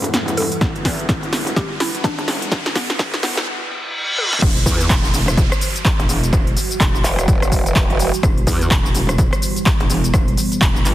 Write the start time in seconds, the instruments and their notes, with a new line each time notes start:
Already playing: wobble bass E1, ambient pad E3 G3 F#4, analog synth pad G3 E4 B4 F#5, riser
0.04 closed hi-hat
0.14 snare, closed hi-hat
0.28 wobble bass E1, closed hi-hat
0.37 synth pluck A4, open hi-hat
0.52 closed hi-hat
0.61 wobble bass E1, kick, snare, closed hi-hat
0.76 closed hi-hat
0.85 wobble bass E2, kick, snare, open hi-hat
0.99 closed hi-hat
1.09 wobble bass E1, kick, snare, closed hi-hat
1.23 closed hi-hat
1.33 wobble bass E1, snare, open hi-hat
1.47 closed hi-hat
1.56 synth pluck G4, kick, snare, closed hi-hat
1.80 synth pluck E4, snare, open hi-hat
1.95 closed hi-hat
2.04 synth pluck D4, kick, snare, closed hi-hat
2.18 wobble bass E1, synth pluck D4, closed hi-hat
2.28 wobble bass E1, snare, open hi-hat
2.42 closed hi-hat
2.52 wobble bass E1, kick, snare, closed hi-hat
2.66 snare, closed hi-hat
2.75 synth pluck B3, kick, snare, open hi-hat
2.90 snare, closed hi-hat
2.99 wobble bass E1, kick, snare, closed hi-hat
3.14 snare, closed hi-hat
3.23 wobble bass E1, synth pluck B3, snare, open hi-hat
3.37 snare, closed hi-hat
3.47 reverse cymbal
4.18 high tom
4.33 snare
4.42 wobble bass E1, ambient pad E3 G3 F#4, kick, cross-stick, closed hi-hat, crash, downlifter, shaker
4.57 closed hi-hat
4.66 wobble bass E2, kick, open hi-hat, shaker
4.80 closed hi-hat, shaker
4.90 wobble bass E1, kick, clap, closed hi-hat, shaker
5.05 shaker
5.14 wobble bass E1, open hi-hat, shaker
5.28 cross-stick, closed hi-hat, shaker
5.37 kick, closed hi-hat, shaker
5.52 cross-stick, closed hi-hat, shaker
5.61 open hi-hat, shaker
5.76 closed hi-hat, shaker
5.85 kick, clap, closed hi-hat, shaker
5.99 wobble bass E1, closed hi-hat
6.09 wobble bass E1, open hi-hat, shaker
6.23 closed hi-hat, shaker
6.33 wobble bass E1, kick, cross-stick, closed hi-hat, shaker
6.47 closed hi-hat
6.57 open hi-hat, shaker
6.71 closed hi-hat, shaker
6.80 wobble bass E1, kick, clap, closed hi-hat, shaker
6.95 shaker
7.04 wobble bass E1, clap, open hi-hat, shaker
7.19 cross-stick, closed hi-hat, shaker
7.28 kick, closed hi-hat, shaker
7.42 cross-stick, closed hi-hat, shaker
7.52 wobble bass E1, kick, open hi-hat, shaker
7.66 closed hi-hat, shaker
7.76 kick, clap, closed hi-hat, shaker
7.90 wobble bass E1, closed hi-hat
7.99 open hi-hat, shaker
8.14 closed hi-hat, shaker
8.23 wobble bass E1, ambient pad B3, kick, cross-stick, closed hi-hat, shaker
8.38 closed hi-hat
8.47 wobble bass E2, kick, open hi-hat, shaker
8.61 closed hi-hat, shaker
8.71 wobble bass E1, kick, clap, closed hi-hat, shaker
8.86 shaker
8.95 wobble bass E1, open hi-hat, shaker
9.09 cross-stick, closed hi-hat, shaker
9.18 kick, closed hi-hat, shaker
9.33 cross-stick, closed hi-hat, shaker
9.42 open hi-hat, shaker
9.56 closed hi-hat, shaker
9.66 kick, clap, closed hi-hat, shaker
9.80 wobble bass E1, closed hi-hat
9.90 wobble bass E1, open hi-hat, shaker
10.04 closed hi-hat, shaker
10.14 wobble bass E1, kick, cross-stick, closed hi-hat, shaker
10.28 closed hi-hat
10.37 open hi-hat, shaker
10.52 closed hi-hat, shaker
10.61 wobble bass E1, kick, clap, closed hi-hat, shaker
10.76 shaker
10.85 wobble bass G1, clap, open hi-hat, shaker